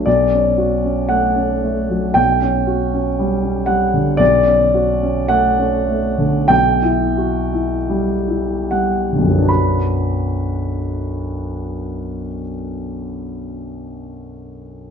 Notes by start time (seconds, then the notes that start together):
0.06 B1 D5
0.33 C#4
0.58 F#4
0.84 C#4
1.09 A3 F#5
1.36 C#4
1.63 A3
1.89 F#3
2.14 B1 G5
2.42 C#4
2.67 F#4
2.94 C#4
3.19 G3
3.42 C#4
3.66 G3 F#5
3.94 D3
4.17 B1 D5
4.46 C#4
4.74 F#4
5.03 C#4
5.28 A3 F#5
5.58 C#4
5.88 A3
6.18 D3
6.48 B1 G5
6.82 E4
7.17 F#4
7.53 E4
7.90 G3
8.28 E4
8.71 G3 F#5
9.12 D3
9.18 B1
9.23 F#2
9.28 F#3
9.34 B3
9.39 D4
9.45 F#4 B5